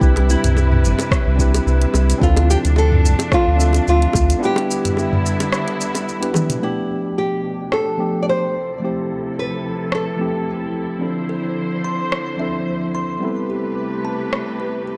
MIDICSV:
0, 0, Header, 1, 7, 480
1, 0, Start_track
1, 0, Tempo, 550459
1, 11, Time_signature, 4, 2, 24, 8
1, 13054, End_track
2, 0, Start_track
2, 0, Title_t, "Kalimba"
2, 0, Program_c, 0, 108
2, 9847, Note_on_c, 0, 69, 66
2, 10068, Note_off_c, 0, 69, 0
2, 10328, Note_on_c, 0, 84, 81
2, 10548, Note_off_c, 0, 84, 0
2, 10807, Note_on_c, 0, 76, 65
2, 11028, Note_off_c, 0, 76, 0
2, 11289, Note_on_c, 0, 84, 85
2, 11519, Note_off_c, 0, 84, 0
2, 11770, Note_on_c, 0, 67, 64
2, 11989, Note_off_c, 0, 67, 0
2, 12248, Note_on_c, 0, 81, 84
2, 12468, Note_off_c, 0, 81, 0
2, 12728, Note_on_c, 0, 71, 61
2, 12959, Note_off_c, 0, 71, 0
2, 12970, Note_on_c, 0, 67, 70
2, 13054, Note_off_c, 0, 67, 0
2, 13054, End_track
3, 0, Start_track
3, 0, Title_t, "Nylon-string guitar"
3, 0, Program_c, 1, 24
3, 0, Note_on_c, 1, 64, 89
3, 226, Note_off_c, 1, 64, 0
3, 267, Note_on_c, 1, 64, 82
3, 1184, Note_off_c, 1, 64, 0
3, 1945, Note_on_c, 1, 65, 100
3, 2183, Note_on_c, 1, 67, 99
3, 2185, Note_off_c, 1, 65, 0
3, 2246, Note_off_c, 1, 67, 0
3, 2426, Note_on_c, 1, 69, 103
3, 2910, Note_off_c, 1, 69, 0
3, 2913, Note_on_c, 1, 65, 96
3, 3349, Note_off_c, 1, 65, 0
3, 3393, Note_on_c, 1, 65, 99
3, 3829, Note_off_c, 1, 65, 0
3, 3881, Note_on_c, 1, 67, 93
3, 5271, Note_off_c, 1, 67, 0
3, 5782, Note_on_c, 1, 64, 78
3, 6224, Note_off_c, 1, 64, 0
3, 6262, Note_on_c, 1, 67, 76
3, 6740, Note_off_c, 1, 67, 0
3, 6743, Note_on_c, 1, 69, 87
3, 7169, Note_off_c, 1, 69, 0
3, 7172, Note_on_c, 1, 74, 65
3, 7219, Note_off_c, 1, 74, 0
3, 7232, Note_on_c, 1, 72, 94
3, 8147, Note_off_c, 1, 72, 0
3, 8190, Note_on_c, 1, 71, 85
3, 8674, Note_on_c, 1, 69, 79
3, 8675, Note_off_c, 1, 71, 0
3, 9348, Note_off_c, 1, 69, 0
3, 13054, End_track
4, 0, Start_track
4, 0, Title_t, "Tine electric piano"
4, 0, Program_c, 2, 4
4, 0, Control_c, 2, 64, 127
4, 0, Note_on_c, 2, 60, 90
4, 0, Note_on_c, 2, 62, 82
4, 0, Note_on_c, 2, 64, 84
4, 9, Note_on_c, 2, 67, 83
4, 23, Control_c, 2, 64, 0
4, 24, Note_on_c, 2, 71, 98
4, 176, Control_c, 2, 64, 127
4, 1169, Note_off_c, 2, 60, 0
4, 1174, Note_off_c, 2, 62, 0
4, 1179, Note_off_c, 2, 64, 0
4, 1184, Note_off_c, 2, 67, 0
4, 1186, Note_on_c, 2, 60, 84
4, 1192, Note_off_c, 2, 71, 0
4, 1197, Note_on_c, 2, 62, 74
4, 1208, Note_on_c, 2, 64, 78
4, 1223, Note_on_c, 2, 67, 76
4, 1233, Note_on_c, 2, 71, 95
4, 1893, Note_off_c, 2, 60, 0
4, 1898, Note_off_c, 2, 62, 0
4, 1902, Note_on_c, 2, 60, 98
4, 1904, Note_off_c, 2, 64, 0
4, 1912, Note_off_c, 2, 67, 0
4, 1914, Note_on_c, 2, 62, 82
4, 1917, Note_off_c, 2, 71, 0
4, 1922, Note_on_c, 2, 64, 81
4, 1935, Note_on_c, 2, 65, 80
4, 1943, Control_c, 2, 64, 0
4, 1948, Note_on_c, 2, 69, 105
4, 2090, Control_c, 2, 64, 127
4, 3091, Note_off_c, 2, 60, 0
4, 3097, Note_off_c, 2, 62, 0
4, 3101, Note_off_c, 2, 64, 0
4, 3103, Note_on_c, 2, 60, 84
4, 3107, Note_off_c, 2, 65, 0
4, 3114, Note_off_c, 2, 69, 0
4, 3115, Note_on_c, 2, 62, 79
4, 3126, Note_on_c, 2, 76, 79
4, 3139, Note_on_c, 2, 65, 76
4, 3153, Note_on_c, 2, 69, 92
4, 3811, Note_off_c, 2, 60, 0
4, 3818, Note_off_c, 2, 62, 0
4, 3823, Note_off_c, 2, 76, 0
4, 3826, Note_on_c, 2, 59, 91
4, 3830, Note_off_c, 2, 65, 0
4, 3834, Note_on_c, 2, 62, 85
4, 3836, Note_off_c, 2, 69, 0
4, 3847, Note_on_c, 2, 64, 89
4, 3860, Note_on_c, 2, 67, 84
4, 3863, Control_c, 2, 64, 0
4, 3871, Note_on_c, 2, 71, 98
4, 4035, Control_c, 2, 64, 127
4, 5013, Note_off_c, 2, 59, 0
4, 5017, Note_off_c, 2, 62, 0
4, 5024, Note_off_c, 2, 64, 0
4, 5030, Note_off_c, 2, 67, 0
4, 5035, Note_off_c, 2, 71, 0
4, 5409, Note_on_c, 2, 59, 72
4, 5415, Note_on_c, 2, 62, 67
4, 5420, Note_on_c, 2, 64, 68
4, 5426, Note_on_c, 2, 67, 66
4, 5433, Note_on_c, 2, 71, 80
4, 5738, Note_off_c, 2, 59, 0
4, 5741, Note_off_c, 2, 62, 0
4, 5743, Note_off_c, 2, 64, 0
4, 5746, Note_off_c, 2, 67, 0
4, 5748, Note_on_c, 2, 53, 73
4, 5750, Note_off_c, 2, 71, 0
4, 5758, Note_on_c, 2, 57, 72
4, 5772, Note_on_c, 2, 59, 71
4, 5782, Note_on_c, 2, 62, 68
4, 5783, Control_c, 2, 64, 0
4, 5793, Note_on_c, 2, 67, 86
4, 5908, Control_c, 2, 64, 127
4, 6934, Note_off_c, 2, 53, 0
4, 6939, Note_off_c, 2, 57, 0
4, 6946, Note_off_c, 2, 59, 0
4, 6951, Note_off_c, 2, 62, 0
4, 6956, Note_on_c, 2, 53, 72
4, 6957, Note_off_c, 2, 67, 0
4, 6963, Note_on_c, 2, 57, 64
4, 6965, Note_on_c, 2, 59, 61
4, 6975, Note_on_c, 2, 62, 60
4, 6977, Note_on_c, 2, 67, 80
4, 7430, Note_off_c, 2, 53, 0
4, 7434, Note_off_c, 2, 57, 0
4, 7435, Note_off_c, 2, 59, 0
4, 7440, Note_off_c, 2, 62, 0
4, 7441, Note_off_c, 2, 67, 0
4, 7463, Control_c, 2, 64, 0
4, 7611, Control_c, 2, 64, 127
4, 7670, Note_on_c, 2, 53, 80
4, 7682, Note_on_c, 2, 57, 73
4, 7693, Note_on_c, 2, 60, 68
4, 7706, Note_on_c, 2, 64, 72
4, 7714, Note_on_c, 2, 67, 88
4, 8855, Note_off_c, 2, 53, 0
4, 8861, Note_off_c, 2, 57, 0
4, 8864, Note_on_c, 2, 53, 76
4, 8866, Note_off_c, 2, 60, 0
4, 8873, Note_off_c, 2, 64, 0
4, 8877, Note_off_c, 2, 67, 0
4, 8878, Note_on_c, 2, 57, 67
4, 8887, Note_on_c, 2, 60, 64
4, 8897, Note_on_c, 2, 64, 64
4, 8906, Note_on_c, 2, 67, 76
4, 9569, Note_off_c, 2, 53, 0
4, 9575, Note_off_c, 2, 60, 0
4, 9579, Note_off_c, 2, 57, 0
4, 9579, Note_on_c, 2, 53, 78
4, 9586, Note_on_c, 2, 60, 74
4, 9588, Note_off_c, 2, 64, 0
4, 9593, Note_off_c, 2, 67, 0
4, 9600, Note_on_c, 2, 62, 76
4, 9609, Note_on_c, 2, 64, 72
4, 9620, Note_on_c, 2, 69, 86
4, 9623, Control_c, 2, 64, 0
4, 9774, Control_c, 2, 64, 127
4, 10769, Note_off_c, 2, 53, 0
4, 10773, Note_off_c, 2, 60, 0
4, 10780, Note_off_c, 2, 62, 0
4, 10783, Note_on_c, 2, 53, 71
4, 10784, Note_off_c, 2, 64, 0
4, 10790, Note_off_c, 2, 69, 0
4, 10795, Note_on_c, 2, 60, 70
4, 10804, Note_on_c, 2, 62, 66
4, 10818, Note_on_c, 2, 64, 68
4, 10830, Note_on_c, 2, 69, 82
4, 11491, Note_off_c, 2, 53, 0
4, 11497, Note_off_c, 2, 60, 0
4, 11502, Note_off_c, 2, 62, 0
4, 11504, Note_on_c, 2, 55, 79
4, 11509, Note_off_c, 2, 64, 0
4, 11515, Note_off_c, 2, 69, 0
4, 11516, Note_on_c, 2, 59, 75
4, 11528, Note_on_c, 2, 60, 75
4, 11539, Note_on_c, 2, 64, 75
4, 11541, Control_c, 2, 64, 0
4, 11551, Note_on_c, 2, 69, 86
4, 11671, Control_c, 2, 64, 127
4, 12692, Note_off_c, 2, 55, 0
4, 12698, Note_off_c, 2, 59, 0
4, 12704, Note_off_c, 2, 60, 0
4, 12709, Note_off_c, 2, 64, 0
4, 12715, Note_off_c, 2, 69, 0
4, 13054, End_track
5, 0, Start_track
5, 0, Title_t, "String section"
5, 0, Program_c, 3, 48
5, 0, Note_on_c, 3, 48, 77
5, 0, Note_on_c, 3, 55, 74
5, 0, Note_on_c, 3, 64, 92
5, 8, Note_on_c, 3, 71, 69
5, 1897, Note_off_c, 3, 55, 0
5, 1900, Note_off_c, 3, 64, 0
5, 1910, Note_off_c, 3, 71, 0
5, 1927, Note_on_c, 3, 53, 73
5, 1927, Note_on_c, 3, 57, 75
5, 1929, Note_on_c, 3, 62, 89
5, 3821, Note_off_c, 3, 48, 0
5, 3830, Note_off_c, 3, 53, 0
5, 3830, Note_off_c, 3, 57, 0
5, 3831, Note_off_c, 3, 62, 0
5, 3861, Note_on_c, 3, 59, 68
5, 3861, Note_on_c, 3, 64, 94
5, 3864, Note_on_c, 3, 55, 75
5, 3865, Note_on_c, 3, 50, 84
5, 5757, Note_off_c, 3, 59, 0
5, 5757, Note_off_c, 3, 64, 0
5, 5759, Note_off_c, 3, 50, 0
5, 5759, Note_off_c, 3, 55, 0
5, 5771, Note_on_c, 3, 67, 73
5, 5772, Note_on_c, 3, 62, 60
5, 5773, Note_on_c, 3, 53, 62
5, 5774, Note_on_c, 3, 47, 65
5, 7434, Note_off_c, 3, 67, 0
5, 7435, Note_off_c, 3, 62, 0
5, 7436, Note_off_c, 3, 47, 0
5, 7445, Note_on_c, 3, 48, 74
5, 7446, Note_on_c, 3, 64, 67
5, 7449, Note_on_c, 3, 69, 80
5, 9577, Note_off_c, 3, 53, 0
5, 9586, Note_off_c, 3, 48, 0
5, 9588, Note_off_c, 3, 69, 0
5, 9607, Note_on_c, 3, 53, 63
5, 9608, Note_on_c, 3, 72, 75
5, 9610, Note_on_c, 3, 50, 68
5, 11494, Note_off_c, 3, 64, 0
5, 11510, Note_off_c, 3, 53, 0
5, 11510, Note_off_c, 3, 72, 0
5, 11511, Note_off_c, 3, 50, 0
5, 11519, Note_on_c, 3, 71, 77
5, 11522, Note_on_c, 3, 57, 65
5, 11524, Note_on_c, 3, 67, 60
5, 11525, Note_on_c, 3, 48, 71
5, 13054, Note_off_c, 3, 48, 0
5, 13054, Note_off_c, 3, 57, 0
5, 13054, Note_off_c, 3, 67, 0
5, 13054, Note_off_c, 3, 71, 0
5, 13054, End_track
6, 0, Start_track
6, 0, Title_t, "Sub bass"
6, 0, Program_c, 4, 38
6, 14, Note_on_c, 4, 36, 102
6, 317, Note_off_c, 4, 36, 0
6, 391, Note_on_c, 4, 36, 80
6, 734, Note_on_c, 4, 31, 101
6, 747, Note_off_c, 4, 36, 0
6, 823, Note_off_c, 4, 31, 0
6, 1104, Note_on_c, 4, 36, 84
6, 1396, Note_off_c, 4, 36, 0
6, 1452, Note_on_c, 4, 36, 91
6, 1623, Note_off_c, 4, 36, 0
6, 1694, Note_on_c, 4, 36, 90
6, 1864, Note_off_c, 4, 36, 0
6, 1935, Note_on_c, 4, 38, 101
6, 2238, Note_off_c, 4, 38, 0
6, 2310, Note_on_c, 4, 38, 83
6, 2662, Note_on_c, 4, 36, 103
6, 2675, Note_off_c, 4, 38, 0
6, 2747, Note_off_c, 4, 36, 0
6, 3027, Note_on_c, 4, 38, 77
6, 3318, Note_off_c, 4, 38, 0
6, 3383, Note_on_c, 4, 38, 79
6, 3548, Note_off_c, 4, 38, 0
6, 3615, Note_on_c, 4, 38, 87
6, 3784, Note_off_c, 4, 38, 0
6, 13054, End_track
7, 0, Start_track
7, 0, Title_t, "Drums"
7, 12, Note_on_c, 9, 36, 114
7, 20, Note_on_c, 9, 82, 32
7, 99, Note_off_c, 9, 36, 0
7, 108, Note_off_c, 9, 82, 0
7, 140, Note_on_c, 9, 60, 81
7, 148, Note_on_c, 9, 42, 41
7, 227, Note_off_c, 9, 60, 0
7, 235, Note_off_c, 9, 42, 0
7, 260, Note_on_c, 9, 82, 73
7, 347, Note_off_c, 9, 82, 0
7, 385, Note_on_c, 9, 42, 54
7, 385, Note_on_c, 9, 45, 63
7, 392, Note_on_c, 9, 82, 42
7, 472, Note_off_c, 9, 42, 0
7, 472, Note_off_c, 9, 45, 0
7, 480, Note_off_c, 9, 82, 0
7, 494, Note_on_c, 9, 60, 66
7, 500, Note_on_c, 9, 82, 34
7, 581, Note_off_c, 9, 60, 0
7, 587, Note_off_c, 9, 82, 0
7, 625, Note_on_c, 9, 45, 81
7, 712, Note_off_c, 9, 45, 0
7, 739, Note_on_c, 9, 82, 69
7, 826, Note_off_c, 9, 82, 0
7, 859, Note_on_c, 9, 60, 76
7, 868, Note_on_c, 9, 42, 53
7, 876, Note_on_c, 9, 82, 44
7, 947, Note_off_c, 9, 60, 0
7, 956, Note_off_c, 9, 42, 0
7, 964, Note_off_c, 9, 82, 0
7, 971, Note_on_c, 9, 36, 119
7, 974, Note_on_c, 9, 37, 75
7, 982, Note_on_c, 9, 82, 31
7, 1059, Note_off_c, 9, 36, 0
7, 1062, Note_off_c, 9, 37, 0
7, 1070, Note_off_c, 9, 82, 0
7, 1211, Note_on_c, 9, 36, 57
7, 1219, Note_on_c, 9, 82, 71
7, 1298, Note_off_c, 9, 36, 0
7, 1306, Note_off_c, 9, 82, 0
7, 1347, Note_on_c, 9, 42, 52
7, 1347, Note_on_c, 9, 60, 65
7, 1355, Note_on_c, 9, 82, 44
7, 1434, Note_off_c, 9, 42, 0
7, 1434, Note_off_c, 9, 60, 0
7, 1442, Note_off_c, 9, 82, 0
7, 1461, Note_on_c, 9, 82, 31
7, 1548, Note_off_c, 9, 82, 0
7, 1583, Note_on_c, 9, 42, 44
7, 1670, Note_off_c, 9, 42, 0
7, 1689, Note_on_c, 9, 60, 81
7, 1700, Note_on_c, 9, 82, 81
7, 1776, Note_off_c, 9, 60, 0
7, 1787, Note_off_c, 9, 82, 0
7, 1828, Note_on_c, 9, 42, 60
7, 1836, Note_on_c, 9, 82, 46
7, 1915, Note_off_c, 9, 42, 0
7, 1923, Note_off_c, 9, 82, 0
7, 1931, Note_on_c, 9, 36, 119
7, 1944, Note_on_c, 9, 82, 29
7, 2019, Note_off_c, 9, 36, 0
7, 2031, Note_off_c, 9, 82, 0
7, 2062, Note_on_c, 9, 60, 82
7, 2069, Note_on_c, 9, 42, 44
7, 2149, Note_off_c, 9, 60, 0
7, 2156, Note_off_c, 9, 42, 0
7, 2184, Note_on_c, 9, 82, 77
7, 2271, Note_off_c, 9, 82, 0
7, 2309, Note_on_c, 9, 42, 55
7, 2317, Note_on_c, 9, 82, 43
7, 2396, Note_off_c, 9, 42, 0
7, 2404, Note_off_c, 9, 82, 0
7, 2408, Note_on_c, 9, 60, 64
7, 2424, Note_on_c, 9, 82, 31
7, 2495, Note_off_c, 9, 60, 0
7, 2512, Note_off_c, 9, 82, 0
7, 2546, Note_on_c, 9, 45, 84
7, 2633, Note_off_c, 9, 45, 0
7, 2664, Note_on_c, 9, 82, 71
7, 2751, Note_off_c, 9, 82, 0
7, 2781, Note_on_c, 9, 60, 87
7, 2788, Note_on_c, 9, 42, 59
7, 2796, Note_on_c, 9, 82, 42
7, 2868, Note_off_c, 9, 60, 0
7, 2875, Note_off_c, 9, 42, 0
7, 2883, Note_off_c, 9, 82, 0
7, 2893, Note_on_c, 9, 37, 74
7, 2894, Note_on_c, 9, 36, 118
7, 2900, Note_on_c, 9, 82, 33
7, 2980, Note_off_c, 9, 37, 0
7, 2981, Note_off_c, 9, 36, 0
7, 2988, Note_off_c, 9, 82, 0
7, 3140, Note_on_c, 9, 82, 74
7, 3227, Note_off_c, 9, 82, 0
7, 3252, Note_on_c, 9, 60, 59
7, 3265, Note_on_c, 9, 42, 58
7, 3273, Note_on_c, 9, 82, 46
7, 3339, Note_off_c, 9, 60, 0
7, 3352, Note_off_c, 9, 42, 0
7, 3360, Note_off_c, 9, 82, 0
7, 3380, Note_on_c, 9, 82, 33
7, 3467, Note_off_c, 9, 82, 0
7, 3507, Note_on_c, 9, 42, 45
7, 3594, Note_off_c, 9, 42, 0
7, 3604, Note_on_c, 9, 60, 85
7, 3615, Note_on_c, 9, 36, 102
7, 3624, Note_on_c, 9, 82, 78
7, 3691, Note_off_c, 9, 60, 0
7, 3702, Note_off_c, 9, 36, 0
7, 3711, Note_off_c, 9, 82, 0
7, 3749, Note_on_c, 9, 42, 61
7, 3757, Note_on_c, 9, 82, 46
7, 3836, Note_off_c, 9, 42, 0
7, 3844, Note_off_c, 9, 82, 0
7, 3865, Note_on_c, 9, 82, 32
7, 3952, Note_off_c, 9, 82, 0
7, 3977, Note_on_c, 9, 60, 86
7, 3993, Note_on_c, 9, 42, 45
7, 4064, Note_off_c, 9, 60, 0
7, 4081, Note_off_c, 9, 42, 0
7, 4106, Note_on_c, 9, 82, 78
7, 4193, Note_off_c, 9, 82, 0
7, 4230, Note_on_c, 9, 42, 54
7, 4230, Note_on_c, 9, 45, 57
7, 4238, Note_on_c, 9, 82, 40
7, 4318, Note_off_c, 9, 42, 0
7, 4318, Note_off_c, 9, 45, 0
7, 4326, Note_off_c, 9, 82, 0
7, 4334, Note_on_c, 9, 60, 64
7, 4348, Note_on_c, 9, 82, 31
7, 4421, Note_off_c, 9, 60, 0
7, 4435, Note_off_c, 9, 82, 0
7, 4471, Note_on_c, 9, 45, 84
7, 4558, Note_off_c, 9, 45, 0
7, 4587, Note_on_c, 9, 82, 73
7, 4674, Note_off_c, 9, 82, 0
7, 4711, Note_on_c, 9, 42, 61
7, 4711, Note_on_c, 9, 60, 76
7, 4719, Note_on_c, 9, 82, 41
7, 4798, Note_off_c, 9, 42, 0
7, 4799, Note_off_c, 9, 60, 0
7, 4806, Note_off_c, 9, 82, 0
7, 4817, Note_on_c, 9, 37, 75
7, 4825, Note_on_c, 9, 82, 34
7, 4905, Note_off_c, 9, 37, 0
7, 4912, Note_off_c, 9, 82, 0
7, 4950, Note_on_c, 9, 42, 33
7, 5037, Note_off_c, 9, 42, 0
7, 5065, Note_on_c, 9, 82, 78
7, 5152, Note_off_c, 9, 82, 0
7, 5185, Note_on_c, 9, 60, 65
7, 5190, Note_on_c, 9, 42, 59
7, 5198, Note_on_c, 9, 82, 45
7, 5272, Note_off_c, 9, 60, 0
7, 5277, Note_off_c, 9, 42, 0
7, 5285, Note_off_c, 9, 82, 0
7, 5308, Note_on_c, 9, 82, 33
7, 5395, Note_off_c, 9, 82, 0
7, 5429, Note_on_c, 9, 42, 44
7, 5516, Note_off_c, 9, 42, 0
7, 5529, Note_on_c, 9, 60, 80
7, 5535, Note_on_c, 9, 48, 64
7, 5543, Note_on_c, 9, 82, 77
7, 5616, Note_off_c, 9, 60, 0
7, 5622, Note_off_c, 9, 48, 0
7, 5630, Note_off_c, 9, 82, 0
7, 5666, Note_on_c, 9, 42, 65
7, 5666, Note_on_c, 9, 47, 77
7, 5674, Note_on_c, 9, 82, 46
7, 5753, Note_off_c, 9, 42, 0
7, 5753, Note_off_c, 9, 47, 0
7, 5761, Note_off_c, 9, 82, 0
7, 6732, Note_on_c, 9, 37, 66
7, 6819, Note_off_c, 9, 37, 0
7, 8651, Note_on_c, 9, 37, 65
7, 8738, Note_off_c, 9, 37, 0
7, 10570, Note_on_c, 9, 37, 72
7, 10657, Note_off_c, 9, 37, 0
7, 12493, Note_on_c, 9, 37, 68
7, 12580, Note_off_c, 9, 37, 0
7, 13054, End_track
0, 0, End_of_file